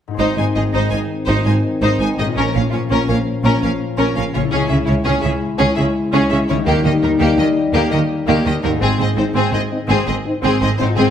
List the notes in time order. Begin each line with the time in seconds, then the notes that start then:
0.08 G#2 D#4
0.13 G#4 C5
0.19 G#1 G#2 D#3 C4 D#4 C5
0.37 G#1 G#2 D#4 C5 G#5
0.55 G#1 G#2 D#4 G#4 D#5
0.73 G#1 G#2 D#4 C5
0.90 G#1 G#2 D#4 C5 G#5
1.26 G#1 G#2 D#4 C5
1.45 G#1 G#2 D#4 C5 G#5
1.82 G#1 G#2 D#4 C5
2.00 G#1 G#2 D#4 C5 G#5
2.18 G#1 G#2 A#2 D#4 G#4 D#5
2.24 C#4
2.28 F4
2.33 A#1 A#2 F3 C#4 A#4
2.38 A#4
2.53 A#1 A#2 C#4 A#4 F5
2.70 A#1 A#2 C#4 F4 C#5
2.89 A#1 A#2 C#4 A#4
3.08 A#1 A#2 C#4 A#4 F5
3.44 A#1 A#2 C#4 A#4
3.62 A#1 A#2 C#4 A#4 F5
3.98 A#1 A#2 C#4 A#4
4.16 A#1 A#2 C#4 A#4 F5
4.35 A#1 A#2 C#3 C#4 F4 C#5
4.40 C#4
4.44 E4
4.49 G#3 C#4 G#4
4.53 C#2 C#3 E4
4.68 C#2 C#3 C#4 G#4 E5
4.86 C#2 C#3 C#4 E4 C#5
5.04 C#2 C#3 C#4 G#4
5.22 C#2 C#3 C#4 G#4 E5
5.59 C#2 C#3 C#4 G#4
5.76 C#2 C#3 C#4 G#4 E5
6.12 C#2 C#3 C#4 G#4
6.30 C#2 C#3 C#4 G#4 E5
6.48 C#2 C#3 D#3 C#4 E4 C#5
6.55 A#3
6.59 D#4
6.64 D#2 D#3 G3 A#3 D#4 G4
6.84 D#2 D#3 A#3 G4 D#5
7.02 D#2 D#3 A#3 D#4 A#4
7.19 D#2 D#3 A#3 G4
7.38 D#2 D#3 A#3 G4 D#5
7.73 D#2 D#3 A#3 G4
7.91 D#2 D#3 A#3 G4 D#5
8.27 D#2 D#3 A#3 G4
8.45 D#2 D#3 A#3 G4 D#5
8.62 D#2 G#2 D#3 A#3 D#4 A#4
8.68 C4
8.72 D#4
8.76 C4 G#4
8.81 G#1 G#2 C4 G#4
8.98 G#1 G#2 C4 G#4 D#5
9.16 G#1 G#2 C4 D#4 C5
9.34 G#1 G#2 C4 G#4
9.51 G#1 G#2 C4 G#4 D#5
9.71 C4 D#4
9.88 G#1 G#2 C4 G#4
10.07 G#1 G#2 C4 G#4 D#5
10.26 C4 D#4
10.43 G#1 G#2 C4 G#4
10.61 G#1 G#2 C4 G#4 D#5
10.78 G#1 G#2 C4 D#4 C5
10.84 C4
10.89 F4
10.93 G#1 G#2 C4 G#4
10.99 C4